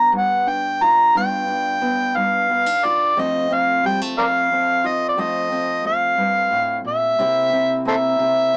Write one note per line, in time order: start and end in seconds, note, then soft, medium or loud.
0.00 0.11 G2 medium
0.00 1.14 B3 medium
0.00 0.45 D4 soft
0.00 0.10 A#5 medium
0.12 1.13 G2 medium
0.17 0.50 F#5 medium
0.47 1.14 D4 medium
0.47 0.85 G5 medium
0.82 1.17 F4 medium
0.82 1.15 A#5 loud
1.15 2.15 G2 medium
1.15 1.80 B3 medium
1.15 1.47 D4 soft
1.15 2.84 F4 medium
1.15 2.18 G5 loud
1.48 2.49 D4 medium
1.81 2.49 B3 medium
2.16 3.12 G2 medium
2.16 2.86 F5 medium
2.50 2.66 B3 medium
2.66 3.16 D4 soft
2.84 3.13 F4 medium
2.84 3.21 D5 medium
3.17 4.17 F2 medium
3.17 3.83 A3 medium
3.17 3.50 C4 medium
3.17 4.83 F4 medium
3.17 3.55 D#5 medium
3.50 4.52 C4 medium
3.50 3.85 F5 medium
3.85 4.01 G3 medium
3.85 4.00 G5 medium
4.01 5.17 A3 soft
4.18 5.16 F2 medium
4.18 4.25 A#4 medium
4.18 4.24 D5 medium
4.18 4.88 F5 medium
4.52 5.18 C4 medium
4.84 5.17 F4 medium
4.84 5.08 D#5 medium
5.09 5.21 D5 medium
5.17 6.17 F2 medium
5.17 5.84 A3 medium
5.17 5.50 C4 medium
5.17 7.15 F4 medium
5.17 5.86 D#5 medium
5.52 7.15 C4 medium
5.85 7.15 A3 medium
5.85 6.82 F5 medium
6.18 6.51 G2 medium
6.51 6.84 A2 medium
6.84 7.18 A#2 medium
6.84 7.83 E5 medium
7.19 8.18 C3 medium
7.19 7.84 A#3 medium
7.19 7.52 C4 medium
7.19 8.57 E4 medium
7.53 8.53 C4 medium
7.85 8.57 A#3 medium
7.85 7.95 A4 medium
7.85 7.94 C5 medium
7.85 8.57 E5 loud
8.19 8.57 C3 medium